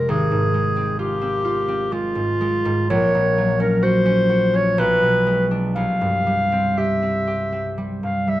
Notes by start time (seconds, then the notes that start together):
Already playing: F2 C3 G#3 C4 F4 A#4
0.08 G#1 G#4
0.31 G#2
0.54 G#3
0.76 C4
0.99 F4 G4
1.22 C4
1.45 F4
1.68 C4
1.92 G#3 F4
2.15 G#2
2.41 G#3
2.65 G#2
2.90 A#1 C#5
3.15 A#2
3.38 F#3
3.60 C#4 A#4
3.82 F#4 C5
4.06 C#4
4.29 F#4
4.54 C#4 C#5
4.78 B1 B4
5.02 B2
5.27 G#3
5.51 D4
5.75 C2 F5
6.01 G2
6.27 G3
6.52 C4
6.77 G4 E5
7.02 C4
7.27 G4
7.52 C4
7.78 G3
8.03 G2 F5
8.27 G3 E5